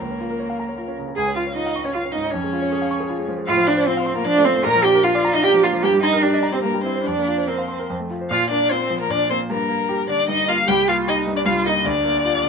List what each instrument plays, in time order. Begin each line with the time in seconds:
Already playing: violin A#4
0.00 grand piano C#2, cello A#3
0.10 grand piano C#4
0.20 grand piano F4
0.30 grand piano A#4
0.40 grand piano C#5
0.50 grand piano F5
0.60 grand piano A#5
0.69 grand piano C#5
0.78 grand piano F4
0.88 grand piano C#4
0.99 grand piano C#3
1.08 grand piano C#4
1.16 grand piano C#2, cello G#4, violin G#5
1.27 grand piano C#4
1.35 cello F4, grand piano F4, violin F5
1.47 grand piano C#5
1.55 cello D#4, grand piano F4, violin D#5
1.66 grand piano F5
1.76 grand piano C#6
1.84 cello C#4, violin C#5, grand piano C#5
1.93 cello F4, grand piano F4, violin F5
2.05 grand piano C#4
2.12 grand piano G#2, cello D#4, violin D#5
2.25 grand piano C#4
2.31 grand piano F2, cello C#4, violin C#5
2.44 grand piano G#3
2.53 grand piano F4
2.62 grand piano C#5
2.72 grand piano G#4
2.82 grand piano F5
2.91 grand piano C#6
3.00 grand piano G#4
3.10 grand piano F4
3.18 grand piano G#3
3.28 grand piano F3
3.38 grand piano G#3
3.46 grand piano A2, cello F4, violin F5
3.57 grand piano F3
3.67 cello D4, grand piano F4, violin D5
3.77 grand piano C5
3.87 cello C4, grand piano F4, violin C5
3.97 grand piano F5
4.06 grand piano C6
4.16 cello A#3, grand piano F4, violin A#4
4.25 grand piano F3, cello D4, violin D5
4.38 grand piano A3
4.45 grand piano F3, cello C4, violin C5
4.56 grand piano A3
4.64 grand piano A#2, cello A#4, violin A#5
4.75 grand piano F3
4.83 grand piano D4, cello G4, violin G5
4.95 grand piano A#4
5.03 cello F4, grand piano F4, violin F5
5.15 grand piano D5
5.25 grand piano A#5
5.33 cello D#4, grand piano F4, violin D#5
5.43 grand piano D4, cello G4, violin G5
5.54 grand piano F3
5.63 grand piano A#3, cello F4, violin F5
5.74 grand piano F3
5.83 grand piano G2, cello G4, violin G5
5.94 grand piano G3
6.03 grand piano D#4, cello D#4, violin D#5
6.13 grand piano A#4
6.22 cello D4, grand piano G4, violin D5
6.33 grand piano D#5
6.43 grand piano A#5
6.52 cello C4, grand piano G4, violin C5
6.62 grand piano G2, cello A#3, violin A#4
6.74 grand piano G3
6.83 cello C4, grand piano E4, violin C5
6.95 grand piano C5
7.04 grand piano F2, cello D4, violin D5
7.18 grand piano A#3
7.27 grand piano F4
7.38 grand piano C5
7.47 cello C4, grand piano A#4, violin C5
7.58 grand piano F5
7.68 grand piano C6
7.79 grand piano A#4
7.90 grand piano F2
8.00 grand piano A3
8.10 grand piano F4
8.21 grand piano C5
8.30 grand piano A#2, cello F4, violin F5
8.50 grand piano A#3, cello D4, violin D5
8.70 cello C4, grand piano F4, violin C5
8.90 grand piano F3
9.01 cello A#3, violin A#4
9.10 grand piano A#2, cello D4, violin D5
9.30 grand piano A#3, cello C4, violin C5
9.50 grand piano G2, cello A#3, violin A#4
9.69 grand piano A#3
9.89 grand piano G4
10.09 grand piano D3, cello D4, violin D5
10.28 grand piano G2, cello D#4, violin D#5
10.49 grand piano A#3, cello F4, violin F5
10.67 grand piano C2, cello G4, violin G5
10.88 grand piano A#3, cello F4, violin F5
11.07 cello D#4, grand piano G4, violin D#5
11.26 grand piano G2
11.37 cello D4, violin D5
11.46 grand piano C2, cello F4, violin F5
11.65 grand piano A#3, cello D#4, violin D#5
11.85 grand piano D2, cello D4, violin D5
12.05 grand piano A#3
12.25 grand piano F4
12.44 grand piano D3